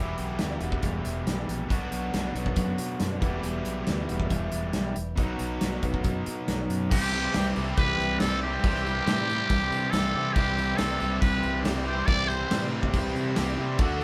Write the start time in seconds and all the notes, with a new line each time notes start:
Already playing: E1 E2 B2 E3 G3 E4
0.00 G4
0.18 B1, closed hi-hat
0.38 D2 E3 G3 E4 F#4, snare, closed hi-hat
0.61 E1 E3 G3 E4 F#4, closed hi-hat
0.72 kick
0.83 E1 E2 B2 E3 G3 E4, kick, closed hi-hat
1.05 E1, closed hi-hat
1.26 B1 E3 G3 E4, snare, closed hi-hat
1.49 A#1, closed hi-hat
1.69 B1 B2 F#3 B3 D4 F#4, kick, closed hi-hat
1.92 B1, closed hi-hat
2.12 B1 F#3 B3 D4 F#4, snare, closed hi-hat
2.35 B1 B3 D4 F#4, closed hi-hat
2.46 kick
2.56 F#2 B2 F#3 B3 D4 F#4, kick, closed hi-hat
2.78 B2, closed hi-hat
3.00 F#2 F#3 B3 D4 F#4, snare, closed hi-hat
3.20 E1 E2 B2 E3 G3 E4 F#4 G4, kick, closed hi-hat
3.42 E1 E2 B2 E3 G3 E4, closed hi-hat
3.65 B1, closed hi-hat
3.86 D2 E3 G3 E4 F#4, snare, closed hi-hat
4.08 E1 E3 G3 E4 F#4, closed hi-hat
4.20 kick
4.29 E1 E2 B2 E3 G3 E4, kick, closed hi-hat
4.52 E1, closed hi-hat
4.72 B1 E3 G3 E4, snare, closed hi-hat
4.96 E1, closed hi-hat
5.16 B1 B2 F#3 B3 D#4 F#4, kick, closed hi-hat
5.39 B1, closed hi-hat
5.60 B1 F#3 B3 D#4 F#4, snare, closed hi-hat
5.80 B1 B3 D#4 F#4, kick, closed hi-hat
5.94 kick
6.03 F#2 B2 F#3 B3 D#4 F#4, kick, closed hi-hat
6.26 B2, closed hi-hat
6.46 B1 F#3 B3 D#4 F#4, snare, closed hi-hat
6.68 F#2, closed hi-hat
6.91 C2 C3 E3 G3 C4 E4 G4, kick, crash
7.12 G3 E4 G4, tambourine
7.33 C2 C3 E3 G3 C4 E4 G4, snare, tambourine, crash
7.56 C2 G3 C4 E4 G4, tambourine
7.77 C2 C3 E3 G3 E4 G4 B4, kick, tambourine, crash
7.99 C2, tambourine
8.20 C2 E3 G3 C4 E4 G4 A4, snare, tambourine, crash
8.42 G3 C4 E4 G4
8.62 C2 C3 E3 G3 C4 E4 G4, kick, crash
8.75 snare
8.84 G3 E4 G4, tambourine
9.05 A2 C3 E3 G3 C4 E4 G4, snare, tambourine, crash
9.27 G3 C4 E4 G4, tambourine
9.48 C2 C3 E3 G3 E4 G4, kick, tambourine, crash
9.71 C3, tambourine
9.91 C2 E3 G3 E4 A4, snare, tambourine, crash
9.95 C4 G4
10.14 C3 G3 C4 G4
10.33 C2 C3 E3 G3 C4 E4 G4, kick, crash
10.37 G4
10.57 G3 E4 G4, tambourine
10.77 C2 C3 E3 G3 C4 E4 G4 A4, snare, tambourine, crash
11.00 C2 G3 C4 E4 G4, tambourine
11.20 C2 C3 E3 G3 E4 G4 B4, kick, tambourine, crash
11.43 C2, tambourine
11.63 C2 E3 G3 C4 E4 G4, snare, tambourine, crash
11.86 G3 C4 E4 G4 C5
12.06 C2 C3 E3 G3 C4 E4 G4 D5, kick, tambourine, crash
12.28 G3 E4 G4 C5, tambourine
12.50 A2 C3 E3 G3 C4 E4 G4, snare, tambourine, crash
12.73 G3 C4 E4 G4
12.83 kick
12.93 C2 C3 E3 G3 E4 G4, kick, tambourine, crash
13.16 C3, tambourine
13.36 C2 E3 G3 C4 E4 G4, snare, tambourine, crash
13.58 C3 G3 C4 E4 G4, tambourine
13.78 D2 D3 A3 D4 F#4, kick, crash
14.01 F#4